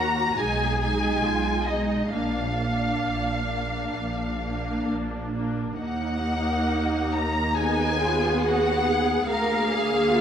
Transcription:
0.00 0.30 D#2 medium
0.00 0.39 A#3 soft
0.00 0.38 F#4 medium
0.00 0.39 F#4 soft
0.00 0.38 A#5 medium
0.00 0.40 A#5 medium
0.38 1.15 B1 medium
0.38 0.80 G#3 medium
0.38 0.79 D#4 soft
0.38 1.25 G#4 medium
0.38 0.80 G#5 medium
0.38 0.81 G#5 medium
0.81 1.67 G#3 medium
0.81 1.67 D#4 medium
0.81 1.67 G#5 medium
1.25 2.03 B1 medium
1.25 1.69 F4 medium
1.67 2.12 G#3 medium
1.67 2.12 D#4 medium
1.67 2.13 D#4 soft
1.67 2.12 D#5 medium
1.67 2.13 D#5 medium
2.12 2.93 A#1 medium
2.12 2.57 A#3 soft
2.12 5.31 D4 medium
2.12 2.56 D4 soft
2.12 4.85 F5 medium
2.57 3.48 A#3 soft
2.57 3.47 D4 soft
3.03 3.85 A#1 soft
3.50 4.40 A#3 soft
3.50 4.40 D4 soft
3.94 4.78 A#1 medium
4.41 5.33 A#3 medium
4.41 5.33 D4 medium
4.89 5.70 A#1 medium
5.35 5.79 A#3 soft
5.35 5.80 D4 medium
5.77 9.27 D#2 medium
5.77 7.56 A#3 medium
5.77 7.56 D#4 medium
5.77 7.11 F#5 medium
5.77 7.12 F#5 medium
7.13 7.59 A#5 medium
7.58 9.27 B3 medium
7.58 8.00 D#4 medium
7.58 9.30 G#4 medium
7.58 8.43 G#5 medium
7.58 8.45 G#5 medium
8.02 8.45 F4 medium
8.43 8.88 F#4 medium
8.43 9.30 F#5 medium
8.43 9.31 F#5 medium
8.87 9.31 G#4 medium
9.28 10.21 D2 medium
9.28 10.21 A#3 medium
9.28 10.21 G#4 medium
9.28 9.72 A#4 medium
9.28 10.21 F5 medium
9.73 10.14 G#4 medium
10.13 10.21 F4 medium

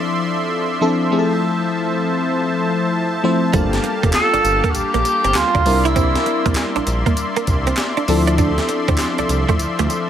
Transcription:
0.00 0.81 F3 loud
0.00 3.50 F3 medium
0.00 0.81 C4 medium
0.00 0.82 D4 medium
0.00 0.82 E4 loud
0.00 0.82 A4 loud
0.00 1.07 D5 medium
0.00 3.50 E5 medium
0.00 1.09 C6 medium
0.81 1.05 F3 medium
0.81 1.06 C4 medium
0.81 1.06 D4 medium
0.81 1.06 E4 medium
0.81 1.06 A4 loud
1.11 2.01 F3 loud
1.11 2.01 A3 medium
1.11 2.01 C4 medium
1.11 2.01 E4 medium
1.11 1.20 G#4 medium
1.11 3.51 C5 medium
1.11 5.62 A5 medium
1.19 2.04 A4 loud
3.23 3.48 F3 loud
3.23 3.48 A3 medium
3.23 3.48 C4 medium
3.23 3.48 E4 medium
3.23 3.49 C5 loud
3.53 3.79 G1 loud
3.53 3.66 G3 medium
3.53 4.43 G3 medium
3.53 8.04 A#3 medium
3.53 4.43 A#3 medium
3.53 4.43 D4 medium
3.53 4.44 F4 medium
3.53 5.63 G4 medium
3.53 4.44 A4 loud
3.53 5.64 F5 medium
3.53 kick loud
3.53 closed hi-hat medium
3.53 tambourine medium
3.73 snare medium
3.73 closed hi-hat medium
3.84 muted clean electric guitar stroke soft
3.84 closed hi-hat medium
4.03 4.12 F1 loud
4.03 4.10 A#3 medium
4.03 kick loud
4.03 closed hi-hat medium
4.13 4.72 A4 loud
4.13 snare loud
4.13 clap loud
4.13 closed hi-hat medium
4.13 tambourine loud
4.34 4.38 G1 medium
4.34 4.40 D4 medium
4.34 closed hi-hat medium
4.44 4.61 G1 medium
4.44 muted clean electric guitar stroke soft
4.44 closed hi-hat medium
4.44 tambourine medium
4.64 4.71 A#3 medium
4.64 kick medium
4.64 closed hi-hat medium
4.70 4.77 F#4 medium
4.75 4.83 A#1 medium
4.75 5.37 G4 loud
4.75 closed hi-hat medium
4.75 tambourine medium
4.94 5.03 A#1 loud
4.94 5.01 A#3 medium
4.94 closed hi-hat medium
5.05 muted clean electric guitar stroke soft
5.05 closed hi-hat medium
5.05 tambourine medium
5.24 5.34 G1 medium
5.24 5.31 C4 medium
5.24 closed hi-hat medium
5.34 5.43 D2 medium
5.34 5.87 F4 loud
5.34 snare loud
5.34 clap loud
5.34 closed hi-hat medium
5.34 tambourine loud
5.55 5.64 D2 medium
5.55 5.62 D4 medium
5.55 kick medium
5.55 closed hi-hat soft
5.65 6.16 C2 loud
5.65 6.64 G3 medium
5.65 6.65 C4 medium
5.65 6.65 D4 medium
5.65 6.65 E4 medium
5.65 6.65 A#4 loud
5.65 10.10 D5 medium
5.65 10.10 E5 medium
5.65 10.10 C6 medium
5.65 muted clean electric guitar stroke soft
5.65 open hi-hat medium
5.65 tambourine medium
5.85 5.92 E4 medium
5.85 6.76 E4 medium
5.85 closed hi-hat medium
5.96 6.08 C4 loud
5.96 kick loud
5.96 closed hi-hat medium
5.96 tambourine medium
6.15 snare medium
6.15 closed hi-hat medium
6.26 muted clean electric guitar stroke soft
6.26 closed hi-hat medium
6.46 6.55 C2 medium
6.46 6.53 A#3 medium
6.46 kick loud
6.46 closed hi-hat medium
6.55 snare loud
6.55 clap loud
6.55 closed hi-hat medium
6.55 tambourine medium
6.76 6.80 A#1 medium
6.76 6.83 D4 medium
6.76 closed hi-hat medium
6.87 7.03 A#1 medium
6.87 muted clean electric guitar stroke soft
6.87 closed hi-hat medium
6.87 tambourine medium
7.06 7.13 A#3 medium
7.06 kick medium
7.06 closed hi-hat medium
7.17 closed hi-hat loud
7.17 tambourine medium
7.36 7.43 A#3 medium
7.36 closed hi-hat medium
7.47 7.73 C2 medium
7.47 muted clean electric guitar stroke medium
7.47 kick loud
7.47 closed hi-hat medium
7.47 tambourine medium
7.67 7.74 C4 medium
7.67 closed hi-hat medium
7.77 snare loud
7.77 clap loud
7.77 closed hi-hat medium
7.77 tambourine loud
7.97 8.04 D4 medium
7.97 closed hi-hat soft
8.08 8.58 D2 medium
8.08 9.07 F3 loud
8.08 10.10 F3 medium
8.08 9.07 C4 loud
8.08 9.07 D4 medium
8.08 9.07 E4 loud
8.08 9.07 A4 loud
8.08 muted clean electric guitar stroke medium
8.08 open hi-hat medium
8.08 tambourine medium
8.27 8.34 D4 medium
8.27 closed hi-hat medium
8.38 8.51 D4 medium
8.38 kick loud
8.38 closed hi-hat medium
8.38 tambourine medium
8.58 snare medium
8.58 closed hi-hat medium
8.69 muted clean electric guitar stroke soft
8.69 closed hi-hat medium
8.88 8.97 D2 medium
8.88 8.95 C4 medium
8.88 kick loud
8.88 closed hi-hat medium
8.98 snare loud
8.98 clap loud
8.98 closed hi-hat medium
8.98 tambourine medium
9.18 9.23 C2 medium
9.18 9.25 D4 medium
9.18 closed hi-hat medium
9.29 9.45 C2 medium
9.29 muted clean electric guitar stroke soft
9.29 closed hi-hat medium
9.29 tambourine medium
9.49 9.56 A3 medium
9.49 kick medium
9.49 closed hi-hat medium
9.59 9.67 D2 medium
9.59 closed hi-hat medium
9.59 tambourine medium
9.79 9.88 D2 loud
9.79 9.86 A3 medium
9.79 closed hi-hat medium
9.90 muted clean electric guitar stroke soft
9.90 closed hi-hat medium
9.90 tambourine medium

